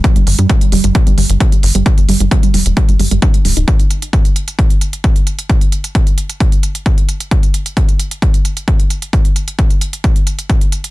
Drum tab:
HH |xxoxxxoxxxoxxxox|xxoxxxoxxxoxxxox|xxxxxxxxxxxxxxxx|xxxxxxxxxxxxxxxx|
BD |o---o---o---o---|o---o---o---o---|o---o---o---o---|o---o---o---o---|

HH |xxxxxxxxxxxxxxxx|xxxxxxxxxxxxxxxx|
BD |o---o---o---o---|o---o---o---o---|